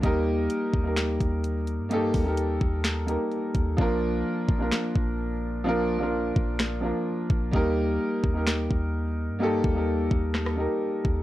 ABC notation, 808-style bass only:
X:1
M:4/4
L:1/16
Q:1/4=128
K:Eblyd
V:1 name="808-style bass" clef=bass
E,,4 z2 E,,4 E,,4- E,, G,,- | G,,2 E,,4 E,,4- E,, z3 E,,2 | B,,,4 z2 B,,,2 z2 B,,,6- | B,,,6 B,,,4- B,,, z3 B,,,2 |
E,,4 z2 E,,4 E,,4- E,, G,,- | G,,2 E,,4 E,,4- E,, z3 E,,2 |]